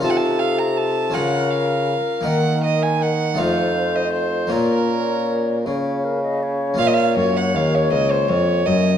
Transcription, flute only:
\new Staff \with { instrumentName = "Flute" } { \time 6/8 \key bes \minor \tempo 4. = 53 a'4. bes'4.~ | bes'4 r8 c''4. | des''4. des''8 bes'16 ees''16 des''8 | des''2. | }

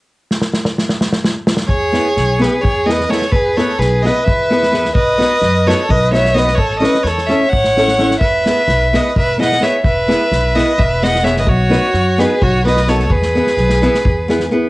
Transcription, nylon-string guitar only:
\new Staff \with { instrumentName = "Nylon-string guitar" } { \time 7/8 \key e \major \tempo 4 = 129 r2. r8 | r8 <b e' gis' b'>8 r8 <b e' gis' b'>8 r8 <b e' gis' b'>8 <b e' gis' b'>8 | r8 <b e' gis' b'>8 r8 <b e' gis' b'>8 r8 <b e' gis' b'>8 <b e' gis' b'>8 | r8 <b dis' fis' b'>8 r8 <b dis' fis' b'>8 r8 <b dis' fis' b'>8 <b dis' fis' b'>8 |
r8 <cis' e' a' cis''>8 r8 <cis' e' a' cis''>8 r8 <cis' e' a' cis''>8 <cis' e' a' cis''>8 | r8 <b e' gis' b'>8 r8 <b e' gis' b'>8 r8 <b e' gis' b'>8 <b e' gis' b'>8 | r8 <b e' gis' b'>8 r8 <b e' gis' b'>8 r8 <b e' gis' b'>8 <b e' gis' b'>8 | r8 <b dis' fis' b'>8 r8 <b dis' fis' b'>8 r8 <b dis' fis' b'>8 <b dis' fis' b'>8 |
r8 <b e' gis' b'>8 r8 <b e' gis' b'>8 r8 <b e' gis' b'>8 <b e' gis' b'>8 | }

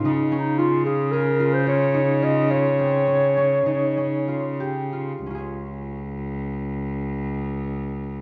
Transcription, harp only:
\new Staff \with { instrumentName = "Harp" } { \time 9/8 \key des \lydian \tempo 4. = 66 ees'8 des'8 f'8 f'8 aes'8 f'8 f'8 ees'8 f'8 | f'8 c'8 des'8 des'8 ees'8 des'8 f'8 g'8 f'8 | <des' f' aes' des''>1~ <des' f' aes' des''>8 | }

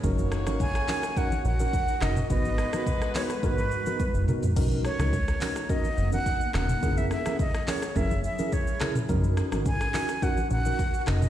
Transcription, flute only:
\new Staff \with { instrumentName = "Flute" } { \time 4/4 \key b \major \tempo 4 = 106 r4 gis''4 fis''8 fis''4 dis''8 | dis''4. cis''8 b'4. r8 | r8 cis''4. dis''8. fis''8. fis''8~ | fis''16 e''16 e''8 dis''8 cis''8 e''8 e''8 cis''8. r16 |
r4 gis''4 fis''8 fis''8.~ fis''32 fis''32 dis''8 | }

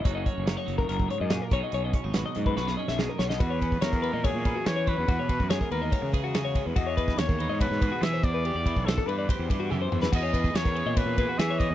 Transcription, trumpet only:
\new Staff \with { instrumentName = "Trumpet" } { \time 4/4 \key fis \mixolydian \tempo 4 = 143 r1 | r1 | b'4 ais'4 gis'4 cis''8 b'8~ | b'4 gis'8 ais'4 r4. |
dis''4 cis''4 b'4 e''8 d''8~ | d''4 a'8 b'4 r4. | dis''4 cis''4 b'4 e''8 dis''8 | }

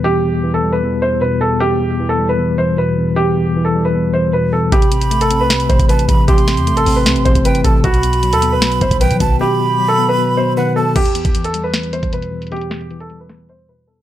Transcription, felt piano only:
\new Staff \with { instrumentName = "Felt piano" } { \time 4/4 \key e \minor \tempo 4 = 154 g'4~ g'16 a'8 b'8. c''8 b'8 a'8 | g'4~ g'16 a'8 b'8. c''8 b'4 | g'4~ g'16 a'8 b'8. c''8 b'8 a'8 | g'4~ g'16 a'8 b'8. c''8 b'4 |
g'4~ g'16 a'8 b'8. c''8 b'8 a'8 | fis'4~ fis'16 a'8 b'8. c''8 b'4 | g'4~ g'16 a'8 b'8. c''8 b'8 a'8 | g'4~ g'16 a'8 b'8. c''8 b'4 |
g'4~ g'16 a'8 b'8. c''8 b'8 a'8 | }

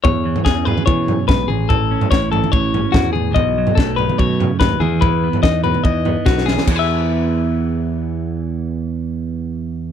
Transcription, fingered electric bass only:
\new Staff \with { instrumentName = "Fingered electric bass" } { \clef bass \time 4/4 \key e \major \tempo 4 = 145 e,4 e,4 e4 b,,8 a,,8~ | a,,4 a,,4 a,,4 e,4 | b,,4 b,,4 b,4 dis,8 e,8~ | e,4 e,4 e,4 b,,4 |
e,1~ | e,1 | }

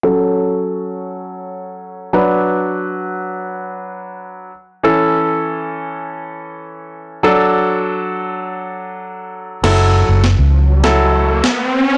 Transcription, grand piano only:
\new Staff \with { instrumentName = "Grand piano" } { \time 4/4 \key fis \minor \tempo 4 = 100 <fis cis' a'>2.~ <fis cis' a'>8 <fis d' b'>8~ | <fis d' b'>2.~ <fis d' b'>8 r8 | <e cis' a'>1 | <fis d' a'>1 |
<fis e' a'>4 r4 <fis e' a'>4 r4 | }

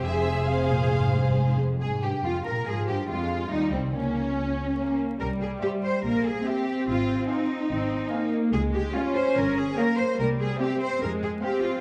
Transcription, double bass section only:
\new Staff \with { instrumentName = "Double bass section" } { \clef bass \time 4/4 \key f \minor \tempo 4 = 143 f,,2.~ f,,8 r8 | aes,8 g,8 f,8 bes,8 aes,8 g,8 f,4 | ees,8 c,8 des,2~ des,8 r8 | c,4 r4 bes,,4 r4 |
aes,,4 r4 aes,,4 r4 | des,4 r4 g,,4 r4 | c,4 r4 f,4 r4 | }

